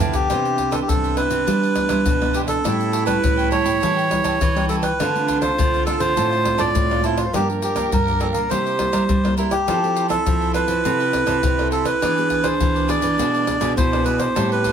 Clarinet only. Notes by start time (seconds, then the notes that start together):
0.31 D4
2.65 E4
4.92 E4
4.99 D4
5.58 F4
7.26 C5
7.34 A#4
8.52 G4
9.68 E4
12.02 D4
13.78 E4
14.36 G4